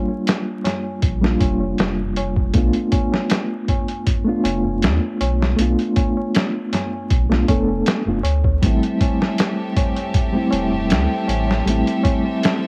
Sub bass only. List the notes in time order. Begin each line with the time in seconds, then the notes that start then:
1.03 A#1
1.41 F1
1.78 F1
2.54 B1
4.44 F1
4.82 E2
5.21 B1
5.58 B1
7.11 B1
7.48 F1
8.06 F1
8.24 D2
8.63 A1
10.52 E1
10.89 D2
11.28 A1
11.65 A1